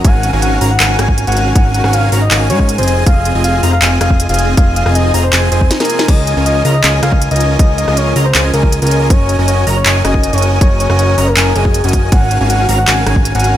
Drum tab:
CC |--------------------------------|--------------------------------|--------------------------------|--------------------------------|
HH |x---x---x---o---x---x---x-xxx---|x---x---x---o---x---x---x-xxx---|x---x---x---o---x---x---x-xxx---|x---x---x---o---x---x---x-xxx---|
CP |----------------x---------------|----------------x---------------|----------------x---------------|----------------x---------------|
SD |--------------------r-----------|------r-------------------------|--------------------r-----------|------r-----------------o-o---o-|
BD |o---------------------o---------|o---------------------o---------|o---------------------o---------|o---------------------o---------|

CC |x-------------------------------|--------------------------------|--------------------------------|--------------------------------|
HH |x---x---x---o---x---x---x-xxx---|x---x---x---o---x---x---x-xxx---|x---x---x---o---x---x---x-xxx---|x---x---x---o---x---x---x-xxx---|
CP |----------------x---------------|----------------x---------------|----------------x---------------|----------------x---------------|
SD |--------------------r-----------|------r-------------------------|--------------------r-----------|------r-------------------------|
BD |o---------------------o---------|o---------------------o---------|o---------------------o---------|o---------------------o-----o---|

CC |--------------------------------|
HH |x---x---x---o---x---x---x-xxx---|
CP |----------------x---------------|
SD |--------------------r-----------|
BD |o---------------------o---------|